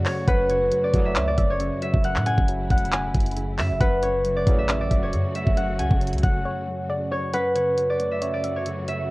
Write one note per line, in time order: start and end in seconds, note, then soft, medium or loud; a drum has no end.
0.00 0.28 F#2 loud
0.00 0.29 C#3 medium
0.00 3.77 C#3 medium
0.00 0.06 F#3 medium
0.00 0.24 F#3 medium
0.00 0.28 A3 medium
0.00 3.77 A3 medium
0.00 0.28 C#4 medium
0.00 2.00 F#4 loud
0.00 0.78 F#5 medium
0.00 0.23 G#5 medium
0.05 0.28 F#3 medium
0.05 0.26 C#5 medium
0.05 0.49 C#5 medium
0.05 clap medium
0.05 open hi-hat medium
0.28 0.70 F#1 loud
0.28 1.37 F#2 loud
0.28 7.30 F#3 medium
0.28 2.33 B4 loud
0.28 1.12 F#5 loud
0.28 kick loud
0.28 closed hi-hat medium
0.49 1.59 C#3 medium
0.49 0.90 C#5 medium
0.49 closed hi-hat medium
0.72 1.81 F#3 medium
0.72 closed hi-hat medium
0.84 1.27 D5 medium
0.94 1.17 F#1 loud
0.94 1.26 A2 medium
0.94 1.26 C#3 loud
0.94 1.26 F#3 loud
0.94 2.04 A3 medium
0.94 kick medium
0.94 closed hi-hat medium
1.05 1.82 E5 medium
1.16 1.37 C#2 loud
1.16 2.26 C#4 loud
1.16 1.37 C#5 medium
1.16 clap loud
1.16 closed hi-hat medium
1.28 1.56 D5 medium
1.38 1.70 F#1 loud
1.38 2.03 F#2 medium
1.38 1.59 E5 medium
1.38 kick loud
1.38 closed hi-hat medium
1.50 3.41 C#5 medium
1.60 2.25 C#3 medium
1.60 closed hi-hat medium
1.82 2.47 F#3 medium
1.82 3.54 E5 medium
1.82 closed hi-hat medium
1.94 2.17 F#1 loud
1.94 kick loud
2.04 3.13 F#2 loud
2.04 3.79 E4 medium
2.04 2.70 F#5 loud
2.04 closed hi-hat medium
2.16 2.37 A2 loud
2.16 clap medium
2.26 3.35 C#3 medium
2.26 2.88 F#5 medium
2.26 3.76 G#5 medium
2.26 closed hi-hat medium
2.38 2.69 F#1 loud
2.38 kick loud
2.48 3.57 F#3 medium
2.48 closed hi-hat medium
2.70 3.13 E1 loud
2.70 3.81 A3 medium
2.70 4.32 F#5 medium
2.70 kick loud
2.70 closed hi-hat soft
2.78 closed hi-hat medium
2.85 closed hi-hat medium
2.92 3.81 C#4 loud
2.92 3.77 G#5 medium
2.92 clap loud
2.92 closed hi-hat medium
3.14 3.60 F#1 loud
3.14 3.79 F#2 medium
3.14 kick loud
3.14 closed hi-hat medium
3.20 closed hi-hat medium
3.26 closed hi-hat medium
3.31 closed hi-hat soft
3.37 3.81 C#3 medium
3.37 closed hi-hat medium
3.58 3.72 F#2 loud
3.58 3.81 F#3 medium
3.58 4.58 E5 medium
3.58 clap medium
3.58 open hi-hat medium
3.70 3.80 F#1 loud
3.80 4.44 F#1 loud
3.80 4.90 F#2 loud
3.80 7.30 C#3 medium
3.80 7.30 A3 medium
3.80 7.30 F#4 loud
3.80 5.85 B4 loud
3.80 4.65 F#5 loud
3.80 kick loud
3.80 closed hi-hat medium
4.03 5.12 C#3 medium
4.03 4.42 C#5 medium
4.03 closed hi-hat medium
4.25 5.34 F#3 medium
4.25 closed hi-hat medium
4.36 4.80 D5 medium
4.47 4.89 A1 loud
4.47 4.79 A2 loud
4.47 4.79 C#3 loud
4.47 4.79 F#3 loud
4.47 5.57 A3 medium
4.47 kick medium
4.47 closed hi-hat medium
4.58 5.35 E5 medium
4.69 5.79 C#4 loud
4.69 4.90 C#5 medium
4.69 clap loud
4.69 closed hi-hat medium
4.81 5.09 D5 medium
4.91 5.14 E1 loud
4.91 5.56 F#2 medium
4.91 5.12 E5 medium
4.91 kick loud
4.91 closed hi-hat medium
5.03 6.94 C#5 medium
5.13 5.24 F#2 loud
5.13 5.78 C#3 medium
5.13 closed hi-hat medium
5.35 6.00 F#3 medium
5.35 7.08 E5 medium
5.35 closed hi-hat medium
5.47 5.81 F#1 loud
5.47 kick medium
5.57 6.66 F#2 loud
5.57 6.23 F#5 loud
5.57 closed hi-hat medium
5.79 5.90 C#2 loud
5.79 6.88 C#3 medium
5.79 6.41 F#5 medium
5.79 7.29 G#5 medium
5.79 closed hi-hat medium
5.91 6.14 F#1 loud
5.91 kick loud
6.01 7.10 F#3 medium
6.01 closed hi-hat medium
6.07 closed hi-hat medium
6.13 6.23 C#2 loud
6.13 closed hi-hat medium
6.18 closed hi-hat medium
6.23 6.44 F#1 loud
6.23 7.34 A3 medium
6.23 7.84 F#5 medium
6.23 kick loud
6.23 closed hi-hat medium
6.45 7.34 C#4 loud
6.45 6.87 C#5 medium
6.67 7.32 F#2 medium
6.89 7.34 C#3 medium
6.89 7.10 D5 medium
7.11 7.34 F#3 medium
7.11 7.32 C#5 medium
7.11 7.55 C#5 medium
7.34 8.43 F#2 loud
7.34 9.11 C#3 medium
7.34 9.11 F#3 medium
7.34 9.11 A3 medium
7.34 9.11 F#4 medium
7.34 9.11 B4 loud
7.34 8.18 F#5 loud
7.34 closed hi-hat medium
7.55 8.65 C#3 medium
7.55 7.96 C#5 medium
7.55 closed hi-hat medium
7.78 8.87 F#3 medium
7.78 closed hi-hat medium
7.90 8.33 D5 medium
8.00 9.10 A3 medium
8.00 closed hi-hat medium
8.11 8.88 E5 medium
8.22 9.11 C#4 medium
8.22 8.43 C#5 medium
8.22 closed hi-hat medium
8.33 8.62 D5 medium
8.44 9.09 F#2 medium
8.44 8.65 E5 medium
8.44 closed hi-hat medium
8.56 9.11 C#5 medium
8.66 9.11 C#3 medium
8.66 closed hi-hat medium
8.88 9.11 F#3 medium
8.88 9.11 E5 medium
8.88 closed hi-hat medium